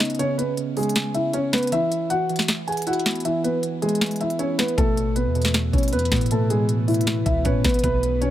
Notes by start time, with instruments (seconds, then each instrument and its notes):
Already playing: synth keys C#3 C#4, grand piano D#4 D#5
0.00 synth keys B3, snare, closed hi-hat
0.05 closed hi-hat
0.10 closed hi-hat
0.15 closed hi-hat
0.19 synth keys C#3, grand piano C#4 C#5, closed hi-hat
0.38 synth keys C#3, grand piano B3 B4, closed hi-hat
0.57 synth keys C#3, closed hi-hat
0.77 synth keys C#3, grand piano G#3 G#4, closed hi-hat, open hi-hat
0.83 closed hi-hat
0.89 closed hi-hat
0.95 synth keys C#3, snare, closed hi-hat
1.14 synth keys C#3, grand piano E4 E5, closed hi-hat
1.33 synth keys C#4, grand piano C#4 C#5, closed hi-hat
1.53 synth keys B3, grand piano B3 B4, snare, closed hi-hat
1.58 closed hi-hat
1.63 closed hi-hat
1.67 closed hi-hat
1.72 synth keys E3, grand piano E4 E5, closed hi-hat
1.91 synth keys E3, closed hi-hat
2.10 synth keys E3, grand piano F#4 F#5, closed hi-hat
2.29 synth keys E3, closed hi-hat
2.36 snare, closed hi-hat
2.42 closed hi-hat
2.48 synth keys E3, snare, closed hi-hat
2.67 synth keys E3, grand piano G#4 G#5, closed hi-hat
2.72 closed hi-hat
2.77 closed hi-hat
2.82 closed hi-hat
2.87 synth keys E4, grand piano F#4 F#5, closed hi-hat
2.93 closed hi-hat
2.99 closed hi-hat
3.06 synth keys B3, snare, closed hi-hat
3.11 closed hi-hat
3.15 closed hi-hat
3.20 closed hi-hat
3.25 synth keys E3, grand piano E4 E5, closed hi-hat
3.44 synth keys E3, grand piano B3 B4, closed hi-hat
3.63 synth keys E3, closed hi-hat
3.82 synth keys E3, grand piano G#3 G#4, closed hi-hat
3.89 closed hi-hat
3.95 closed hi-hat
4.01 synth keys E3, snare, closed hi-hat
4.06 closed hi-hat
4.11 closed hi-hat
4.16 closed hi-hat
4.21 synth keys E3, grand piano E4 E5, closed hi-hat
4.30 closed hi-hat
4.39 grand piano C#4 C#5, synth keys E4, closed hi-hat
4.58 synth keys B3, grand piano B3 B4, snare, closed hi-hat
4.68 closed hi-hat
4.78 808-style bass A1, synth keys B2, analog synth pad E3 A3 B3, grand piano A3 A4, kick, closed hi-hat
4.97 synth keys B2, closed hi-hat
5.16 synth keys B2, grand piano B3 B4, closed hi-hat
5.26 808-style bass E2
5.35 synth keys B2, closed hi-hat
5.42 snare, closed hi-hat
5.48 closed hi-hat
5.54 synth keys B2, snare, closed hi-hat
5.73 808-style bass A1, synth keys B2, grand piano C#4 C#5, kick, closed hi-hat
5.78 closed hi-hat
5.83 closed hi-hat
5.88 closed hi-hat
5.93 808-style bass E2, grand piano B3 B4, synth keys B4, closed hi-hat
5.99 closed hi-hat
6.05 closed hi-hat
6.12 808-style bass A2, synth keys B3, kick, snare, closed hi-hat
6.16 closed hi-hat
6.21 closed hi-hat
6.26 closed hi-hat
6.31 synth keys B2, grand piano A3 A4, closed hi-hat
6.50 synth keys B2, grand piano G#3 G#4, closed hi-hat
6.69 synth keys B2, closed hi-hat
6.88 synth keys B2, grand piano E3 E4, closed hi-hat, open hi-hat
6.94 closed hi-hat
7.01 closed hi-hat
7.07 synth keys B2, snare, closed hi-hat
7.26 808-style bass C#2, synth keys B2, grand piano E4 E5, kick, closed hi-hat
7.44 808-style bass A2, grand piano C#4 C#5, synth keys B4, kick, closed hi-hat
7.64 808-style bass A1, synth keys B3, grand piano B3 B4, kick, snare, closed hi-hat
7.69 closed hi-hat
7.74 closed hi-hat
7.79 closed hi-hat
7.83 808-style bass B1, synth keys B2, analog synth pad D#3 F#3, grand piano B3 B4, kick, closed hi-hat
8.03 synth keys B2, closed hi-hat
8.21 synth keys B2, grand piano C#4 C#5, closed hi-hat